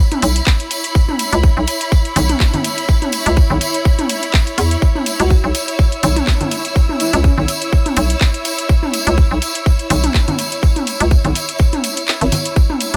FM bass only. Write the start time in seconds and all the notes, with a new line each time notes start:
0.22 B1
1.33 C#2
1.57 B1
2.16 B1
3.26 C#2
3.50 B1
4.58 E2
5.20 C#2
5.44 B1
6.03 B1
7.13 C#2
7.38 B1
7.97 B1
9.07 C#2
9.31 B1
9.90 B1
11.00 C#2
11.25 B1
12.21 G#1